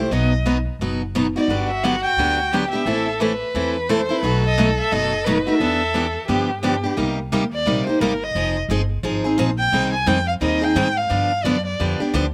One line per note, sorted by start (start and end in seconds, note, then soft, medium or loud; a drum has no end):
0.00 0.12 A3 soft
0.00 0.11 E4 soft
0.00 0.11 G4 medium
0.00 0.13 C5 medium
0.11 0.66 B1 medium
0.11 0.32 B2 medium
0.11 0.32 F#3 medium
0.11 0.32 B3 medium
0.11 0.32 D#4 medium
0.11 0.33 F#4 medium
0.11 0.46 D#5 medium
0.46 0.56 B2 medium
0.46 0.57 F#3 medium
0.46 0.57 B3 medium
0.46 0.57 D#4 medium
0.46 0.57 F#4 medium
0.79 1.34 F#1 medium
0.79 1.01 B2 medium
0.79 1.01 F#3 medium
0.79 1.01 B3 medium
0.79 1.02 D#4 medium
0.79 1.02 F#4 medium
1.15 1.26 B2 medium
1.15 1.26 F#3 medium
1.15 1.26 B3 medium
1.15 1.26 D#4 medium
1.15 1.26 F#4 medium
1.36 1.49 B3 soft
1.36 1.49 D#4 soft
1.36 1.48 F#4 medium
1.36 1.68 D5 medium
1.48 2.03 G1 medium
1.48 1.70 D3 medium
1.48 1.70 F#3 medium
1.48 1.70 B3 medium
1.48 1.70 D4 medium
1.48 2.53 F#4 medium
1.48 1.70 G4 medium
1.70 1.85 E5 medium
1.83 1.94 D3 medium
1.83 1.94 F#3 medium
1.83 1.95 B3 medium
1.83 1.95 D4 medium
1.83 1.95 G4 medium
1.83 2.02 F#5 medium
2.03 2.68 G5 medium
2.17 2.72 D2 medium
2.17 2.38 D3 medium
2.17 2.39 F#3 medium
2.17 2.39 B3 medium
2.17 2.39 D4 medium
2.17 2.39 G4 medium
2.52 2.63 D3 medium
2.52 2.63 F#3 medium
2.52 2.63 B3 medium
2.52 2.64 D4 medium
2.52 2.87 G4 medium
2.52 2.64 G4 medium
2.71 2.86 B3 soft
2.71 2.86 D4 soft
2.71 2.86 G4 medium
2.71 3.36 E5 medium
2.85 3.40 A1 medium
2.85 3.07 E3 medium
2.85 3.07 A3 medium
2.85 3.07 C4 medium
2.85 3.07 E4 medium
2.85 3.22 A4 medium
2.85 3.07 A4 medium
3.20 3.31 E3 medium
3.20 3.31 A3 medium
3.20 3.31 C4 medium
3.20 3.32 E4 medium
3.20 3.32 A4 medium
3.20 3.90 B4 medium
3.54 4.09 E2 medium
3.54 3.75 E3 medium
3.54 3.75 A3 medium
3.54 3.75 C4 medium
3.54 3.76 E4 medium
3.54 3.76 A4 medium
3.89 4.00 E3 medium
3.89 4.00 A3 medium
3.89 4.00 C4 medium
3.89 4.00 E4 medium
3.89 4.00 A4 medium
3.89 4.10 A4 medium
3.89 4.23 C5 loud
4.09 4.23 C4 soft
4.09 4.23 E4 medium
4.09 4.22 A4 medium
4.09 4.43 B4 medium
4.23 4.78 B1 medium
4.23 4.44 B2 medium
4.23 4.44 F#3 medium
4.23 4.44 A3 medium
4.23 4.44 D#4 medium
4.23 4.44 F#4 medium
4.23 5.26 A4 medium
4.46 4.77 D#5 medium
4.58 4.68 B2 medium
4.58 4.68 F#3 medium
4.58 4.69 A3 medium
4.58 4.69 D#4 medium
4.58 4.69 F#4 medium
4.80 4.93 E5 medium
4.91 5.46 F#1 medium
4.91 5.12 B2 medium
4.91 5.12 F#3 medium
4.91 5.13 A3 medium
4.91 5.13 D#4 medium
4.91 5.13 F#4 medium
4.91 5.26 D#5 loud
5.25 5.37 B2 medium
5.25 5.37 F#3 medium
5.25 5.37 A3 loud
5.25 5.38 D#4 medium
5.25 5.38 F#4 medium
5.25 5.58 B4 medium
5.47 5.60 A3 soft
5.47 5.60 D#4 medium
5.47 5.60 F#4 medium
5.47 6.25 E5 medium
5.59 6.15 E2 medium
5.59 5.81 E3 medium
5.59 5.81 B3 medium
5.59 5.81 D4 medium
5.59 5.81 G4 medium
5.59 6.24 A4 medium
5.94 6.05 E3 medium
5.94 6.05 B3 medium
5.94 6.06 D4 medium
5.94 6.06 G4 medium
6.28 6.84 G2 medium
6.28 6.49 D3 medium
6.28 6.49 F3 medium
6.28 6.49 B3 medium
6.28 6.50 D4 medium
6.28 6.60 G4 medium
6.28 6.50 G4 medium
6.61 6.74 D3 medium
6.61 6.74 F3 medium
6.61 6.74 B3 medium
6.61 6.75 D4 medium
6.61 6.94 G4 medium
6.61 6.75 G4 medium
6.84 6.97 B3 soft
6.84 6.97 D4 soft
6.84 6.97 G4 medium
6.97 7.31 C2 medium
6.97 7.18 C3 medium
6.97 7.18 G3 medium
6.97 7.18 A#3 medium
6.97 7.18 D#4 medium
6.97 7.18 G4 medium
7.32 7.65 D#2 medium
7.32 7.43 C3 medium
7.32 7.43 G3 medium
7.32 7.43 A#3 medium
7.32 7.43 D#4 medium
7.32 7.43 G4 medium
7.54 7.85 D5 medium
7.66 7.85 A#1 medium
7.66 7.86 C3 medium
7.66 7.86 G3 medium
7.66 7.87 A#3 medium
7.66 7.87 D#4 medium
7.66 7.86 G4 medium
7.87 8.00 A#3 soft
7.87 8.01 D#4 soft
7.87 8.00 G4 medium
7.87 8.03 C5 medium
7.87 muted upright bass stroke soft
8.00 8.34 G1 medium
8.00 8.12 C3 medium
8.00 8.12 G3 medium
8.00 8.12 A#3 medium
8.00 8.12 D#4 medium
8.00 8.12 G4 medium
8.00 8.25 A#4 medium
8.23 8.57 D#5 medium
8.35 8.68 F1 medium
8.35 8.56 F3 medium
8.35 8.56 C4 medium
8.35 8.56 D#4 medium
8.35 8.56 G#4 medium
8.69 9.02 G1 medium
8.69 8.80 F3 medium
8.69 8.81 C4 medium
8.69 8.81 D#4 medium
8.69 8.81 G#4 medium
9.03 9.37 G#1 medium
9.03 9.24 F3 medium
9.03 9.24 C4 medium
9.03 9.24 D#4 medium
9.03 9.23 G#4 medium
9.24 9.38 C4 soft
9.24 9.37 D#4 medium
9.24 9.37 G#4 medium
9.38 9.71 A#1 medium
9.38 9.49 F3 medium
9.38 9.49 C4 loud
9.38 9.49 D#4 medium
9.38 9.50 G#4 medium
9.59 9.91 G5 loud
9.72 10.06 C2 medium
9.72 9.93 D#3 medium
9.72 9.93 G3 medium
9.72 9.94 C4 medium
9.72 9.94 D#4 medium
9.72 9.94 G#4 medium
9.93 10.09 G#5 medium
10.06 10.40 F2 medium
10.06 10.18 D#3 medium
10.06 10.18 G3 medium
10.06 10.18 C4 medium
10.06 10.18 D#4 medium
10.06 10.18 G#4 medium
10.06 10.27 G5 loud
10.28 10.34 F5 medium
10.41 10.74 D#2 medium
10.41 10.61 D#3 medium
10.41 10.61 G3 medium
10.41 10.62 C4 medium
10.41 10.61 D#4 medium
10.41 10.60 G#4 medium
10.41 10.65 D#5 medium
10.62 10.75 C4 soft
10.62 10.75 D#4 soft
10.62 10.75 G#4 medium
10.62 10.99 G5 loud
10.75 11.09 G#2 medium
10.75 10.87 D#3 medium
10.75 10.87 G3 medium
10.75 10.87 C4 medium
10.75 10.87 D#4 medium
10.75 10.87 G#4 loud
10.97 11.45 F5 medium
11.09 11.44 G2 medium
11.09 11.30 D3 medium
11.09 11.31 F3 medium
11.09 11.31 B3 medium
11.09 11.31 D4 medium
11.09 11.31 G4 medium
11.44 11.78 F#2 medium
11.44 11.56 D3 medium
11.44 11.56 F3 medium
11.44 11.56 B3 medium
11.44 11.56 D4 medium
11.44 11.56 G4 medium
11.44 11.65 D5 medium
11.66 12.10 D5 medium
11.80 11.99 F2 medium
11.80 11.99 D3 medium
11.80 12.00 F3 medium
11.80 12.00 B3 medium
11.80 12.00 D4 medium
11.80 11.99 G4 medium
12.00 12.13 B3 soft
12.00 12.13 D4 medium
12.00 12.13 G4 medium
12.00 muted upright bass stroke soft
12.13 12.34 D2 medium
12.13 12.24 D3 medium
12.13 12.25 F3 medium
12.13 12.25 B3 medium
12.13 12.25 D4 medium
12.13 12.25 G4 medium